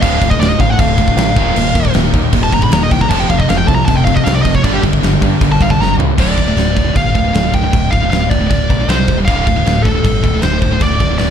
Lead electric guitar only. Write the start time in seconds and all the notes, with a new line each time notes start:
0.01 F5
0.30 D#5
0.40 D5
0.50 D#5
0.61 F5
0.70 F#5
0.80 F5
2.43 A5
2.54 A#5
2.64 B5
2.73 A#5
2.83 D#5
2.92 G5
3.01 A#5
3.09 A5
3.20 G5
3.30 F5
3.38 D#5
3.49 F5
3.57 G5
3.67 A5
3.75 A#5
3.85 A5
3.95 G5
4.05 F5
4.14 D#5
4.24 F5
4.34 D5
4.42 D#5
4.55 C#5
4.64 D5
4.73 G4
5.52 A5
5.62 F5
5.71 A5
5.81 A#5
6.20 D5
6.96 F5
7.54 G5
7.91 F5
8.10 F5
8.30 D5
8.47 D5
8.89 C5
9.25 F5
9.82 A4
10.43 C5
10.82 D5
11.00 D5
11.18 D5